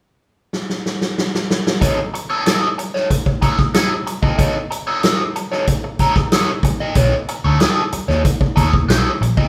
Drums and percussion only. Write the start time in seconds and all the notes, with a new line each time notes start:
0.53 snare
0.70 snare
0.86 snare
1.01 snare
1.18 snare
1.35 snare
1.50 snare
1.67 snare
1.82 kick, closed hi-hat
2.15 closed hi-hat
2.46 snare, closed hi-hat
2.79 closed hi-hat
2.96 snare
3.11 kick, closed hi-hat
3.26 kick
3.42 kick, closed hi-hat
3.59 kick, snare
3.74 snare, closed hi-hat
4.07 closed hi-hat
4.23 kick
4.39 kick, closed hi-hat
4.72 closed hi-hat
5.03 snare, closed hi-hat
5.36 closed hi-hat
5.52 snare
5.67 kick, closed hi-hat
5.99 kick, closed hi-hat
6.16 kick, snare
6.32 snare, closed hi-hat
6.63 kick, closed hi-hat
6.95 kick, closed hi-hat
7.28 closed hi-hat
7.60 snare, closed hi-hat
7.92 closed hi-hat
8.10 snare
8.25 kick, closed hi-hat
8.41 kick
8.57 kick, closed hi-hat
8.74 kick
8.90 snare, closed hi-hat
9.23 closed hi-hat
9.37 kick